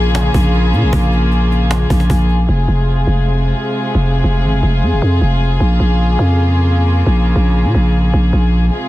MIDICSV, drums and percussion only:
0, 0, Header, 1, 2, 480
1, 0, Start_track
1, 0, Tempo, 389610
1, 1145, Time_signature, 4, 2, 24, 8
1, 10946, End_track
2, 0, Start_track
2, 0, Title_t, "Cajon"
2, 24, Note_on_c, 9, 38, 38
2, 104, Note_off_c, 9, 38, 0
2, 104, Note_on_c, 9, 38, 37
2, 183, Note_off_c, 9, 38, 0
2, 183, Note_on_c, 9, 38, 112
2, 306, Note_off_c, 9, 38, 0
2, 424, Note_on_c, 9, 36, 95
2, 547, Note_off_c, 9, 36, 0
2, 663, Note_on_c, 9, 38, 40
2, 786, Note_off_c, 9, 38, 0
2, 903, Note_on_c, 9, 38, 45
2, 1026, Note_off_c, 9, 38, 0
2, 1144, Note_on_c, 9, 36, 114
2, 1267, Note_off_c, 9, 36, 0
2, 1382, Note_on_c, 9, 38, 43
2, 1505, Note_off_c, 9, 38, 0
2, 1621, Note_on_c, 9, 38, 47
2, 1745, Note_off_c, 9, 38, 0
2, 1866, Note_on_c, 9, 38, 49
2, 1989, Note_off_c, 9, 38, 0
2, 2103, Note_on_c, 9, 38, 111
2, 2184, Note_off_c, 9, 38, 0
2, 2184, Note_on_c, 9, 38, 36
2, 2264, Note_off_c, 9, 38, 0
2, 2264, Note_on_c, 9, 38, 27
2, 2344, Note_on_c, 9, 36, 100
2, 2387, Note_off_c, 9, 38, 0
2, 2463, Note_on_c, 9, 38, 64
2, 2467, Note_off_c, 9, 36, 0
2, 2585, Note_on_c, 9, 36, 102
2, 2586, Note_off_c, 9, 38, 0
2, 2708, Note_off_c, 9, 36, 0
2, 2823, Note_on_c, 9, 38, 40
2, 2946, Note_off_c, 9, 38, 0
2, 10946, End_track
0, 0, End_of_file